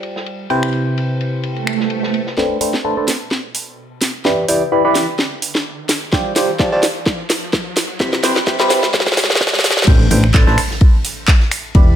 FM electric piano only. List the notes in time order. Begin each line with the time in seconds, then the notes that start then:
Already playing: G3 F4 G4 C5 D5 G5
0.50 C3 E4 G4 B4 C5 G5
2.38 A3 D4 A4 B4 C5 G5
2.61 A3 D4 A4 B4 C5 G5
2.84 A3 D4 A4 B4 C5 A5
2.97 A3 D4 A4 B4 C5 A5
4.25 E3 E4 G4 B4 D5 B5
4.48 E3 E4 G4 B4 D5 G5
4.72 E3 E4 G4 B4 D5 B5
4.85 E3 E4 G4 B4 D5 B5
6.13 G3 F4 G4 C5 D5 G5
6.36 G3 F4 G4 C5 D5 G5
6.60 G3 F4 G4 C5 D5 A5
6.72 G3 F4 G4 C5 D5 A5
8.00 C3 E4 G4 B4 C5 B5
8.23 C3 E4 G4 B4 C5 G5
8.47 C3 E4 G4 B4 C5 B5
8.60 C3 E4 G4 B4 C5 B5
9.88 A3 D4 A4 B4 C5 G5
10.11 A3 D4 A4 B4 C5 G5
10.35 A3 D4 A4 B4 C5 A5
10.47 A3 D4 A4 B4 C5 A5
11.75 E3 E4 G4 B4 D5 B5